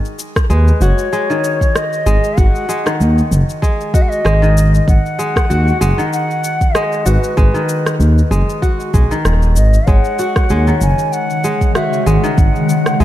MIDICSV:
0, 0, Header, 1, 7, 480
1, 0, Start_track
1, 0, Key_signature, 5, "minor"
1, 0, Tempo, 625000
1, 1826, Time_signature, 4, 2, 24, 8
1, 10019, End_track
2, 0, Start_track
2, 0, Title_t, "Bansuri"
2, 0, Program_c, 0, 73
2, 383, Note_on_c, 0, 71, 76
2, 624, Note_on_c, 0, 73, 90
2, 635, Note_off_c, 0, 71, 0
2, 1346, Note_on_c, 0, 75, 100
2, 1358, Note_off_c, 0, 73, 0
2, 1829, Note_on_c, 0, 78, 101
2, 1840, Note_off_c, 0, 75, 0
2, 2307, Note_off_c, 0, 78, 0
2, 3020, Note_on_c, 0, 75, 106
2, 3087, Note_on_c, 0, 78, 86
2, 3099, Note_off_c, 0, 75, 0
2, 3142, Note_on_c, 0, 75, 106
2, 3153, Note_off_c, 0, 78, 0
2, 3744, Note_off_c, 0, 75, 0
2, 3751, Note_on_c, 0, 78, 109
2, 4678, Note_off_c, 0, 78, 0
2, 4707, Note_on_c, 0, 78, 104
2, 5183, Note_on_c, 0, 75, 91
2, 5195, Note_off_c, 0, 78, 0
2, 5426, Note_on_c, 0, 71, 75
2, 5438, Note_off_c, 0, 75, 0
2, 6386, Note_off_c, 0, 71, 0
2, 7343, Note_on_c, 0, 75, 89
2, 7580, Note_on_c, 0, 78, 111
2, 7592, Note_off_c, 0, 75, 0
2, 8303, Note_off_c, 0, 78, 0
2, 8307, Note_on_c, 0, 80, 108
2, 8544, Note_on_c, 0, 78, 111
2, 8556, Note_off_c, 0, 80, 0
2, 9023, Note_off_c, 0, 78, 0
2, 9028, Note_on_c, 0, 76, 89
2, 9273, Note_on_c, 0, 78, 90
2, 9284, Note_off_c, 0, 76, 0
2, 9992, Note_on_c, 0, 76, 90
2, 10003, Note_off_c, 0, 78, 0
2, 10019, Note_off_c, 0, 76, 0
2, 10019, End_track
3, 0, Start_track
3, 0, Title_t, "Singing bowl"
3, 0, Program_c, 1, 14
3, 7579, Note_on_c, 1, 73, 68
3, 10019, Note_off_c, 1, 73, 0
3, 10019, End_track
4, 0, Start_track
4, 0, Title_t, "Kora"
4, 0, Program_c, 2, 46
4, 0, Note_on_c, 2, 66, 68
4, 306, Note_off_c, 2, 66, 0
4, 383, Note_on_c, 2, 56, 73
4, 627, Note_on_c, 2, 66, 64
4, 855, Note_off_c, 2, 56, 0
4, 865, Note_on_c, 2, 56, 71
4, 997, Note_on_c, 2, 51, 73
4, 1024, Note_off_c, 2, 56, 0
4, 1585, Note_on_c, 2, 56, 70
4, 1750, Note_off_c, 2, 66, 0
4, 1824, Note_on_c, 2, 66, 70
4, 2055, Note_off_c, 2, 56, 0
4, 2064, Note_on_c, 2, 56, 72
4, 2186, Note_off_c, 2, 51, 0
4, 2195, Note_on_c, 2, 51, 60
4, 2224, Note_off_c, 2, 56, 0
4, 2782, Note_on_c, 2, 56, 72
4, 2947, Note_off_c, 2, 66, 0
4, 3025, Note_on_c, 2, 66, 66
4, 3252, Note_off_c, 2, 56, 0
4, 3261, Note_on_c, 2, 56, 79
4, 3386, Note_off_c, 2, 51, 0
4, 3396, Note_on_c, 2, 51, 75
4, 3424, Note_off_c, 2, 56, 0
4, 3984, Note_on_c, 2, 56, 68
4, 4148, Note_off_c, 2, 66, 0
4, 4224, Note_on_c, 2, 66, 81
4, 4452, Note_off_c, 2, 56, 0
4, 4462, Note_on_c, 2, 56, 67
4, 4584, Note_off_c, 2, 51, 0
4, 4593, Note_on_c, 2, 51, 68
4, 4624, Note_off_c, 2, 56, 0
4, 5182, Note_on_c, 2, 56, 70
4, 5347, Note_off_c, 2, 66, 0
4, 5421, Note_on_c, 2, 66, 69
4, 5652, Note_off_c, 2, 56, 0
4, 5661, Note_on_c, 2, 56, 79
4, 5784, Note_off_c, 2, 51, 0
4, 5793, Note_on_c, 2, 51, 67
4, 5824, Note_off_c, 2, 56, 0
4, 6381, Note_on_c, 2, 56, 65
4, 6544, Note_off_c, 2, 66, 0
4, 6622, Note_on_c, 2, 66, 77
4, 6856, Note_off_c, 2, 56, 0
4, 6865, Note_on_c, 2, 56, 65
4, 6989, Note_off_c, 2, 51, 0
4, 6998, Note_on_c, 2, 51, 70
4, 7024, Note_off_c, 2, 56, 0
4, 7584, Note_on_c, 2, 56, 74
4, 7624, Note_off_c, 2, 51, 0
4, 7745, Note_off_c, 2, 66, 0
4, 7825, Note_on_c, 2, 66, 70
4, 8058, Note_off_c, 2, 56, 0
4, 8067, Note_on_c, 2, 56, 78
4, 8198, Note_on_c, 2, 51, 66
4, 8224, Note_off_c, 2, 56, 0
4, 8787, Note_on_c, 2, 56, 68
4, 8948, Note_off_c, 2, 66, 0
4, 9026, Note_on_c, 2, 66, 77
4, 9256, Note_off_c, 2, 56, 0
4, 9265, Note_on_c, 2, 56, 71
4, 9387, Note_off_c, 2, 51, 0
4, 9397, Note_on_c, 2, 51, 72
4, 9424, Note_off_c, 2, 56, 0
4, 9985, Note_on_c, 2, 56, 77
4, 10019, Note_off_c, 2, 51, 0
4, 10019, Note_off_c, 2, 56, 0
4, 10019, Note_off_c, 2, 66, 0
4, 10019, End_track
5, 0, Start_track
5, 0, Title_t, "Ambient pad"
5, 0, Program_c, 3, 92
5, 7583, Note_on_c, 3, 49, 73
5, 7585, Note_on_c, 3, 56, 67
5, 7588, Note_on_c, 3, 51, 64
5, 10019, Note_off_c, 3, 49, 0
5, 10019, Note_off_c, 3, 51, 0
5, 10019, Note_off_c, 3, 56, 0
5, 10019, End_track
6, 0, Start_track
6, 0, Title_t, "Analog synth bass"
6, 0, Program_c, 4, 38
6, 380, Note_on_c, 4, 39, 78
6, 549, Note_off_c, 4, 39, 0
6, 620, Note_on_c, 4, 30, 100
6, 710, Note_off_c, 4, 30, 0
6, 1584, Note_on_c, 4, 32, 88
6, 1672, Note_off_c, 4, 32, 0
6, 1826, Note_on_c, 4, 32, 96
6, 1913, Note_off_c, 4, 32, 0
6, 2306, Note_on_c, 4, 39, 83
6, 2472, Note_off_c, 4, 39, 0
6, 2545, Note_on_c, 4, 30, 95
6, 2632, Note_off_c, 4, 30, 0
6, 3266, Note_on_c, 4, 32, 84
6, 3686, Note_off_c, 4, 32, 0
6, 3744, Note_on_c, 4, 32, 98
6, 3832, Note_off_c, 4, 32, 0
6, 4225, Note_on_c, 4, 39, 84
6, 4391, Note_off_c, 4, 39, 0
6, 4463, Note_on_c, 4, 30, 93
6, 4551, Note_off_c, 4, 30, 0
6, 5424, Note_on_c, 4, 32, 87
6, 5512, Note_off_c, 4, 32, 0
6, 5666, Note_on_c, 4, 32, 99
6, 5753, Note_off_c, 4, 32, 0
6, 6140, Note_on_c, 4, 39, 81
6, 6309, Note_off_c, 4, 39, 0
6, 6381, Note_on_c, 4, 30, 97
6, 6470, Note_off_c, 4, 30, 0
6, 6866, Note_on_c, 4, 35, 86
6, 6953, Note_off_c, 4, 35, 0
6, 7105, Note_on_c, 4, 27, 82
6, 7344, Note_on_c, 4, 32, 96
6, 7356, Note_off_c, 4, 27, 0
6, 7511, Note_off_c, 4, 32, 0
6, 7585, Note_on_c, 4, 32, 97
6, 7672, Note_off_c, 4, 32, 0
6, 8065, Note_on_c, 4, 39, 80
6, 8231, Note_off_c, 4, 39, 0
6, 8304, Note_on_c, 4, 30, 92
6, 8392, Note_off_c, 4, 30, 0
6, 9265, Note_on_c, 4, 32, 87
6, 9352, Note_off_c, 4, 32, 0
6, 9505, Note_on_c, 4, 32, 98
6, 9592, Note_off_c, 4, 32, 0
6, 9983, Note_on_c, 4, 39, 83
6, 10019, Note_off_c, 4, 39, 0
6, 10019, End_track
7, 0, Start_track
7, 0, Title_t, "Drums"
7, 40, Note_on_c, 9, 82, 20
7, 117, Note_off_c, 9, 82, 0
7, 146, Note_on_c, 9, 82, 70
7, 223, Note_off_c, 9, 82, 0
7, 278, Note_on_c, 9, 36, 91
7, 279, Note_on_c, 9, 37, 76
7, 280, Note_on_c, 9, 82, 31
7, 355, Note_off_c, 9, 36, 0
7, 356, Note_off_c, 9, 37, 0
7, 357, Note_off_c, 9, 82, 0
7, 387, Note_on_c, 9, 82, 42
7, 463, Note_off_c, 9, 82, 0
7, 520, Note_on_c, 9, 82, 21
7, 597, Note_off_c, 9, 82, 0
7, 624, Note_on_c, 9, 82, 72
7, 701, Note_off_c, 9, 82, 0
7, 757, Note_on_c, 9, 82, 31
7, 834, Note_off_c, 9, 82, 0
7, 866, Note_on_c, 9, 82, 39
7, 943, Note_off_c, 9, 82, 0
7, 1003, Note_on_c, 9, 82, 20
7, 1080, Note_off_c, 9, 82, 0
7, 1107, Note_on_c, 9, 82, 66
7, 1183, Note_off_c, 9, 82, 0
7, 1238, Note_on_c, 9, 36, 58
7, 1243, Note_on_c, 9, 82, 31
7, 1315, Note_off_c, 9, 36, 0
7, 1320, Note_off_c, 9, 82, 0
7, 1348, Note_on_c, 9, 37, 80
7, 1350, Note_on_c, 9, 82, 43
7, 1425, Note_off_c, 9, 37, 0
7, 1426, Note_off_c, 9, 82, 0
7, 1482, Note_on_c, 9, 82, 21
7, 1559, Note_off_c, 9, 82, 0
7, 1587, Note_on_c, 9, 82, 78
7, 1664, Note_off_c, 9, 82, 0
7, 1720, Note_on_c, 9, 82, 29
7, 1797, Note_off_c, 9, 82, 0
7, 1825, Note_on_c, 9, 82, 42
7, 1826, Note_on_c, 9, 36, 116
7, 1902, Note_off_c, 9, 82, 0
7, 1903, Note_off_c, 9, 36, 0
7, 1963, Note_on_c, 9, 82, 21
7, 2039, Note_off_c, 9, 82, 0
7, 2069, Note_on_c, 9, 82, 76
7, 2146, Note_off_c, 9, 82, 0
7, 2201, Note_on_c, 9, 37, 74
7, 2202, Note_on_c, 9, 82, 32
7, 2278, Note_off_c, 9, 37, 0
7, 2279, Note_off_c, 9, 82, 0
7, 2309, Note_on_c, 9, 82, 43
7, 2386, Note_off_c, 9, 82, 0
7, 2444, Note_on_c, 9, 82, 21
7, 2521, Note_off_c, 9, 82, 0
7, 2550, Note_on_c, 9, 82, 76
7, 2627, Note_off_c, 9, 82, 0
7, 2684, Note_on_c, 9, 82, 33
7, 2761, Note_off_c, 9, 82, 0
7, 2786, Note_on_c, 9, 36, 59
7, 2792, Note_on_c, 9, 82, 41
7, 2863, Note_off_c, 9, 36, 0
7, 2869, Note_off_c, 9, 82, 0
7, 2924, Note_on_c, 9, 82, 21
7, 3001, Note_off_c, 9, 82, 0
7, 3025, Note_on_c, 9, 36, 105
7, 3031, Note_on_c, 9, 82, 70
7, 3102, Note_off_c, 9, 36, 0
7, 3108, Note_off_c, 9, 82, 0
7, 3163, Note_on_c, 9, 82, 31
7, 3240, Note_off_c, 9, 82, 0
7, 3269, Note_on_c, 9, 37, 84
7, 3271, Note_on_c, 9, 82, 42
7, 3346, Note_off_c, 9, 37, 0
7, 3348, Note_off_c, 9, 82, 0
7, 3405, Note_on_c, 9, 82, 21
7, 3482, Note_off_c, 9, 82, 0
7, 3513, Note_on_c, 9, 82, 86
7, 3590, Note_off_c, 9, 82, 0
7, 3644, Note_on_c, 9, 82, 33
7, 3721, Note_off_c, 9, 82, 0
7, 3745, Note_on_c, 9, 36, 120
7, 3752, Note_on_c, 9, 82, 40
7, 3822, Note_off_c, 9, 36, 0
7, 3828, Note_off_c, 9, 82, 0
7, 3884, Note_on_c, 9, 82, 21
7, 3960, Note_off_c, 9, 82, 0
7, 3989, Note_on_c, 9, 82, 80
7, 4066, Note_off_c, 9, 82, 0
7, 4118, Note_on_c, 9, 36, 94
7, 4122, Note_on_c, 9, 37, 80
7, 4123, Note_on_c, 9, 82, 32
7, 4195, Note_off_c, 9, 36, 0
7, 4199, Note_off_c, 9, 37, 0
7, 4200, Note_off_c, 9, 82, 0
7, 4229, Note_on_c, 9, 82, 44
7, 4306, Note_off_c, 9, 82, 0
7, 4362, Note_on_c, 9, 82, 22
7, 4439, Note_off_c, 9, 82, 0
7, 4467, Note_on_c, 9, 82, 76
7, 4544, Note_off_c, 9, 82, 0
7, 4601, Note_on_c, 9, 82, 33
7, 4677, Note_off_c, 9, 82, 0
7, 4708, Note_on_c, 9, 82, 46
7, 4785, Note_off_c, 9, 82, 0
7, 4842, Note_on_c, 9, 82, 21
7, 4919, Note_off_c, 9, 82, 0
7, 4946, Note_on_c, 9, 82, 75
7, 5023, Note_off_c, 9, 82, 0
7, 5078, Note_on_c, 9, 36, 55
7, 5079, Note_on_c, 9, 82, 31
7, 5155, Note_off_c, 9, 36, 0
7, 5155, Note_off_c, 9, 82, 0
7, 5184, Note_on_c, 9, 37, 80
7, 5185, Note_on_c, 9, 82, 43
7, 5260, Note_off_c, 9, 37, 0
7, 5262, Note_off_c, 9, 82, 0
7, 5318, Note_on_c, 9, 82, 22
7, 5395, Note_off_c, 9, 82, 0
7, 5423, Note_on_c, 9, 82, 88
7, 5499, Note_off_c, 9, 82, 0
7, 5557, Note_on_c, 9, 82, 35
7, 5634, Note_off_c, 9, 82, 0
7, 5665, Note_on_c, 9, 36, 119
7, 5665, Note_on_c, 9, 82, 40
7, 5741, Note_off_c, 9, 82, 0
7, 5742, Note_off_c, 9, 36, 0
7, 5799, Note_on_c, 9, 82, 22
7, 5876, Note_off_c, 9, 82, 0
7, 5905, Note_on_c, 9, 82, 80
7, 5982, Note_off_c, 9, 82, 0
7, 6040, Note_on_c, 9, 37, 72
7, 6042, Note_on_c, 9, 82, 34
7, 6117, Note_off_c, 9, 37, 0
7, 6118, Note_off_c, 9, 82, 0
7, 6148, Note_on_c, 9, 82, 42
7, 6225, Note_off_c, 9, 82, 0
7, 6284, Note_on_c, 9, 82, 20
7, 6361, Note_off_c, 9, 82, 0
7, 6390, Note_on_c, 9, 82, 78
7, 6467, Note_off_c, 9, 82, 0
7, 6524, Note_on_c, 9, 82, 32
7, 6601, Note_off_c, 9, 82, 0
7, 6626, Note_on_c, 9, 36, 58
7, 6628, Note_on_c, 9, 82, 47
7, 6703, Note_off_c, 9, 36, 0
7, 6705, Note_off_c, 9, 82, 0
7, 6759, Note_on_c, 9, 82, 22
7, 6836, Note_off_c, 9, 82, 0
7, 6865, Note_on_c, 9, 36, 100
7, 6867, Note_on_c, 9, 82, 77
7, 6942, Note_off_c, 9, 36, 0
7, 6944, Note_off_c, 9, 82, 0
7, 7000, Note_on_c, 9, 82, 31
7, 7077, Note_off_c, 9, 82, 0
7, 7105, Note_on_c, 9, 37, 74
7, 7106, Note_on_c, 9, 82, 44
7, 7182, Note_off_c, 9, 37, 0
7, 7183, Note_off_c, 9, 82, 0
7, 7237, Note_on_c, 9, 82, 22
7, 7314, Note_off_c, 9, 82, 0
7, 7342, Note_on_c, 9, 82, 84
7, 7419, Note_off_c, 9, 82, 0
7, 7477, Note_on_c, 9, 82, 32
7, 7554, Note_off_c, 9, 82, 0
7, 7583, Note_on_c, 9, 82, 43
7, 7585, Note_on_c, 9, 36, 120
7, 7659, Note_off_c, 9, 82, 0
7, 7661, Note_off_c, 9, 36, 0
7, 7715, Note_on_c, 9, 82, 22
7, 7792, Note_off_c, 9, 82, 0
7, 7824, Note_on_c, 9, 82, 74
7, 7901, Note_off_c, 9, 82, 0
7, 7956, Note_on_c, 9, 37, 71
7, 7957, Note_on_c, 9, 82, 32
7, 7958, Note_on_c, 9, 36, 94
7, 8033, Note_off_c, 9, 37, 0
7, 8034, Note_off_c, 9, 82, 0
7, 8035, Note_off_c, 9, 36, 0
7, 8061, Note_on_c, 9, 82, 41
7, 8138, Note_off_c, 9, 82, 0
7, 8197, Note_on_c, 9, 82, 19
7, 8274, Note_off_c, 9, 82, 0
7, 8303, Note_on_c, 9, 82, 72
7, 8380, Note_off_c, 9, 82, 0
7, 8438, Note_on_c, 9, 82, 31
7, 8515, Note_off_c, 9, 82, 0
7, 8547, Note_on_c, 9, 82, 41
7, 8624, Note_off_c, 9, 82, 0
7, 8680, Note_on_c, 9, 82, 22
7, 8757, Note_off_c, 9, 82, 0
7, 8786, Note_on_c, 9, 82, 74
7, 8863, Note_off_c, 9, 82, 0
7, 8919, Note_on_c, 9, 36, 57
7, 8921, Note_on_c, 9, 82, 29
7, 8995, Note_off_c, 9, 36, 0
7, 8997, Note_off_c, 9, 82, 0
7, 9025, Note_on_c, 9, 37, 73
7, 9027, Note_on_c, 9, 82, 45
7, 9102, Note_off_c, 9, 37, 0
7, 9103, Note_off_c, 9, 82, 0
7, 9163, Note_on_c, 9, 82, 21
7, 9240, Note_off_c, 9, 82, 0
7, 9268, Note_on_c, 9, 82, 80
7, 9345, Note_off_c, 9, 82, 0
7, 9401, Note_on_c, 9, 82, 33
7, 9478, Note_off_c, 9, 82, 0
7, 9506, Note_on_c, 9, 36, 119
7, 9507, Note_on_c, 9, 82, 39
7, 9583, Note_off_c, 9, 36, 0
7, 9584, Note_off_c, 9, 82, 0
7, 9642, Note_on_c, 9, 82, 20
7, 9718, Note_off_c, 9, 82, 0
7, 9747, Note_on_c, 9, 82, 73
7, 9824, Note_off_c, 9, 82, 0
7, 9877, Note_on_c, 9, 37, 70
7, 9879, Note_on_c, 9, 82, 30
7, 9954, Note_off_c, 9, 37, 0
7, 9956, Note_off_c, 9, 82, 0
7, 9987, Note_on_c, 9, 82, 44
7, 10019, Note_off_c, 9, 82, 0
7, 10019, End_track
0, 0, End_of_file